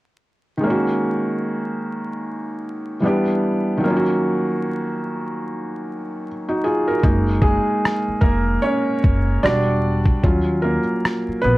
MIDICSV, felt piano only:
0, 0, Header, 1, 2, 480
1, 0, Start_track
1, 0, Key_signature, 6, "major"
1, 0, Tempo, 800000
1, 380, Time_signature, 4, 2, 24, 8
1, 6947, End_track
2, 0, Start_track
2, 0, Title_t, "Felt piano"
2, 0, Program_c, 0, 0
2, 344, Note_on_c, 0, 51, 64
2, 364, Note_on_c, 0, 56, 59
2, 381, Note_on_c, 0, 58, 63
2, 401, Note_on_c, 0, 61, 55
2, 420, Note_on_c, 0, 66, 74
2, 509, Control_c, 0, 64, 127
2, 1778, Note_off_c, 0, 51, 0
2, 1788, Note_off_c, 0, 56, 0
2, 1797, Note_off_c, 0, 58, 0
2, 1802, Note_on_c, 0, 52, 58
2, 1807, Note_off_c, 0, 61, 0
2, 1811, Note_on_c, 0, 55, 63
2, 1816, Note_off_c, 0, 66, 0
2, 1822, Note_on_c, 0, 59, 65
2, 1829, Control_c, 0, 64, 0
2, 1831, Note_on_c, 0, 62, 57
2, 1840, Note_on_c, 0, 67, 68
2, 1937, Control_c, 0, 64, 127
2, 2265, Note_on_c, 0, 51, 69
2, 2283, Note_on_c, 0, 54, 57
2, 2291, Note_off_c, 0, 52, 0
2, 2296, Note_off_c, 0, 55, 0
2, 2301, Note_off_c, 0, 59, 0
2, 2303, Note_on_c, 0, 58, 68
2, 2306, Note_off_c, 0, 62, 0
2, 2307, Control_c, 0, 64, 0
2, 2310, Note_off_c, 0, 67, 0
2, 2323, Note_on_c, 0, 61, 56
2, 2342, Note_on_c, 0, 65, 59
2, 2368, Note_off_c, 0, 65, 0
2, 2379, Note_on_c, 0, 66, 77
2, 2414, Control_c, 0, 64, 127
2, 3756, Note_off_c, 0, 66, 0
2, 3891, Note_on_c, 0, 66, 53
2, 3893, Note_on_c, 0, 63, 51
2, 3979, Note_off_c, 0, 66, 0
2, 3980, Note_off_c, 0, 63, 0
2, 3984, Note_on_c, 0, 68, 68
2, 3987, Note_on_c, 0, 65, 52
2, 4118, Note_off_c, 0, 68, 0
2, 4120, Note_off_c, 0, 65, 0
2, 4126, Note_on_c, 0, 70, 64
2, 4132, Note_on_c, 0, 66, 48
2, 4179, Note_off_c, 0, 51, 0
2, 4187, Note_off_c, 0, 54, 0
2, 4198, Note_off_c, 0, 58, 0
2, 4208, Note_off_c, 0, 61, 0
2, 4220, Note_on_c, 0, 56, 52
2, 4222, Note_on_c, 0, 58, 45
2, 4225, Note_on_c, 0, 63, 62
2, 4228, Control_c, 0, 64, 0
2, 4350, Control_c, 0, 64, 127
2, 4353, Note_off_c, 0, 70, 0
2, 4356, Note_off_c, 0, 66, 0
2, 4450, Note_on_c, 0, 68, 84
2, 4454, Note_off_c, 0, 56, 0
2, 4463, Note_on_c, 0, 56, 58
2, 4917, Note_off_c, 0, 58, 0
2, 4918, Note_off_c, 0, 56, 0
2, 4918, Note_off_c, 0, 63, 0
2, 4925, Note_on_c, 0, 70, 79
2, 4939, Note_on_c, 0, 58, 67
2, 4950, Note_off_c, 0, 68, 0
2, 5156, Note_off_c, 0, 70, 0
2, 5163, Note_off_c, 0, 58, 0
2, 5172, Note_on_c, 0, 73, 93
2, 5183, Note_on_c, 0, 61, 71
2, 5638, Note_off_c, 0, 61, 0
2, 5659, Note_on_c, 0, 55, 53
2, 5659, Note_on_c, 0, 74, 96
2, 5664, Note_on_c, 0, 62, 73
2, 5666, Note_on_c, 0, 66, 60
2, 5669, Control_c, 0, 64, 0
2, 5671, Note_off_c, 0, 73, 0
2, 5755, Control_c, 0, 64, 127
2, 5997, Note_off_c, 0, 55, 0
2, 6000, Note_off_c, 0, 66, 0
2, 6019, Note_off_c, 0, 74, 0
2, 6024, Note_off_c, 0, 62, 0
2, 6137, Note_on_c, 0, 54, 55
2, 6142, Note_on_c, 0, 61, 46
2, 6145, Note_on_c, 0, 65, 62
2, 6148, Control_c, 0, 64, 0
2, 6236, Control_c, 0, 64, 127
2, 6372, Note_on_c, 0, 70, 75
2, 6386, Note_on_c, 0, 58, 56
2, 6476, Note_off_c, 0, 54, 0
2, 6478, Note_off_c, 0, 61, 0
2, 6480, Note_off_c, 0, 65, 0
2, 6832, Note_off_c, 0, 70, 0
2, 6839, Note_off_c, 0, 58, 0
2, 6849, Note_on_c, 0, 71, 86
2, 6866, Note_on_c, 0, 59, 67
2, 6947, Note_off_c, 0, 59, 0
2, 6947, Note_off_c, 0, 71, 0
2, 6947, End_track
0, 0, End_of_file